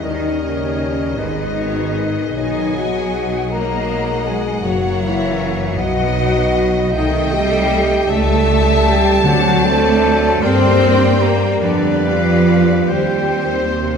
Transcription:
Already playing: viola section C#4 D#4, harp D#4 D#5, violin section D#5
0.02 double bass section D#2, harp D#3, cello section D#3, bassoon G3, french horn section D#4, clarinet A#4, violin section A#4, flute section D#5
0.23 harp D#4
0.40 french horn section C#4
0.44 cello section C#3, harp A#4, flute section C#5
0.63 harp G4
0.83 harp D#5
1.00 harp A#5
1.15 double bass section G#1, bassoon G#3, viola section B3 G#4, french horn section D#4, clarinet B4
1.19 harp G#2, cello section D#3, violin section B4, flute section D#5
1.38 harp G#3
1.57 harp D#4, viola section F#4, violin section C#5
1.77 harp B4
1.96 viola section G#4, harp G#4, violin section D#5
2.17 harp D#5
2.36 double bass section B1, harp B2, cello section D#3, bassoon F#3, viola section B3 G#4, french horn section D#4, violin section D#5 G#5, clarinet D#5, flute section D#5
2.56 harp F#3
2.75 harp D#4, french horn section F#4, flute section F#5
2.79 cello section F#3
2.96 harp F#4
3.15 harp D#4
3.34 harp D#5
3.51 viola section G#3 F#4, cello section A#3, french horn section A#4, violin section D#5 F#5, harp F#5, flute section A#5
3.70 harp D#5
3.89 harp F#4
4.07 harp D#4
4.25 harp F#3, cello section G#3, french horn section G#4, flute section G#5
4.46 harp B3
4.62 double bass section F#1, harp F#2, cello section F#3, bassoon A#3, viola section A#3 F#4, french horn section F#4, clarinet C#5, violin section C#5, flute section F#5
4.83 harp A#3
5.01 cello section E3, harp C#4, french horn section E4, flute section E5
5.21 harp F#4
5.39 harp A#4
5.60 harp C#5
5.77 double bass section B1, harp B2, cello section F#3, bassoon B3, viola section B3 D#4, french horn section F#4, violin section D#5, clarinet D#5, flute section F#5
5.98 harp B3
6.17 harp D#4
6.35 harp F#4
6.55 harp B4
6.74 harp D#5
6.92 double bass section C2, harp C3, bassoon A3, viola section A3 A4, french horn section D#4, flute section D#5, violin section G5
6.96 cello section D#3, violin section D#5
7.13 harp A3
7.31 cello section G3, harp D#4, french horn section G4, flute section G5
7.68 harp D#4
7.89 harp D#5
8.07 double bass section C#2, harp C#3, bassoon G3, viola section A3 G4, cello section A3, violin section E5 A5, clarinet E5, flute section A5
8.12 french horn section A4
8.27 harp G3
8.47 harp E4
8.67 viola section A3
8.87 cello section G3, french horn section G4, flute section G5
9.03 harp E5
9.24 double bass section D2, harp D3, timpani D3, bassoon F#3, cello section F#3, viola section C4 F#4, french horn section F#4, clarinet C5, violin section D5, flute section F#5
9.43 harp D4
9.63 cello section A3, french horn section A4, harp C5, flute section A5
9.83 harp F#4
10.04 harp D5
10.23 harp C6
10.42 double bass section G2, harp G2, bassoon G3, viola section A#3 G4, cello section C4, clarinet A#4, french horn section C5, violin section D5 G5, flute section C6
10.62 harp G3
10.82 harp D4
11.02 harp A#4
11.21 cello section A#3, harp G4, french horn section A#4, flute section A#5
11.61 harp F2, double bass section F2, cello section D3, viola section B3 G4, french horn section D4, clarinet B4, violin section B4 D5, flute section D5
11.82 harp G3
12.03 cello section F3, harp D4, french horn section F4, flute section F5
12.26 harp B4
12.46 harp G4
12.68 harp D5
12.88 double bass section D#2, harp D#3, viola section C4 G4, french horn section G4, clarinet C5, violin section C5, flute section G5
12.93 cello section G3
13.12 harp C4
13.34 harp C5
13.56 harp G4
13.78 cello section C3, french horn section C4, flute section C5

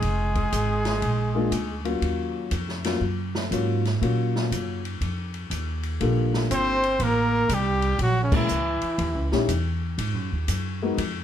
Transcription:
Already playing: trombone G#3, trumpet G#4
0.02 upright bass F1, kick, ride
0.35 kick, ride
0.52 upright bass G#1, kick, hi-hat pedal, ride
0.85 snare, ride
1.01 upright bass A#1, kick, ride
1.35 upright piano G#3 A#3 D4 F4
1.51 upright bass D2, kick, hi-hat pedal, ride
1.85 upright piano F#3 A#3 C#4 F4, ride
2.01 upright bass D#2, kick, ride
2.51 upright bass F2, kick, hi-hat pedal, ride
2.69 snare
2.84 upright piano F#3 A#3 C#4 F4, snare, ride
3.01 upright bass F#2, kick
3.35 snare
3.51 upright bass G#2, upright piano F#3 A#3 C#4 F4, kick, hi-hat pedal, ride
3.85 snare, ride
4.01 upright bass A#2, upright piano F#3 A#3 C#4 F4, kick, ride
4.36 snare
4.52 upright bass F#2, kick, hi-hat pedal, ride
4.85 ride
5.01 upright bass F2, kick, ride
5.34 ride
5.50 upright bass D#2, kick, hi-hat pedal, ride
5.83 ride
6.00 upright bass A#1, upright piano G3 A#3 D4 F4 A4, kick, ride
6.34 snare
6.50 upright bass G1, trombone C4, trumpet C5, kick, hi-hat pedal, ride
6.83 ride
6.99 upright bass A1, trombone A#3, kick, ride
7.03 trumpet A#4
7.49 upright bass C2, trombone G3, kick, hi-hat pedal, ride
7.54 trumpet G4
7.82 ride
7.98 upright bass A#1, trombone F#3, kick, ride
8.03 trumpet F#4
8.22 trombone C#3, trumpet C#4
8.32 trombone E3, upright piano G#3 A#3 C#4 E4 A#4, trumpet E4, kick, crash
8.49 upright bass C#2, hi-hat pedal
8.82 muted upright bass stroke, ride
8.98 upright bass D#2, kick, ride
9.15 upright bass C#2
9.32 upright bass A#1, upright piano G3 C#4 D#4 E4 G4, snare
9.49 upright bass E2, kick, hi-hat pedal, ride
9.98 upright bass G#2, kick, ride
10.14 upright bass F#2
10.32 upright bass D#2
10.48 upright bass F#2, kick, hi-hat pedal, ride
10.82 upright piano G#3 B3 D#4 F#4 A#4
10.97 upright bass F2, kick, ride

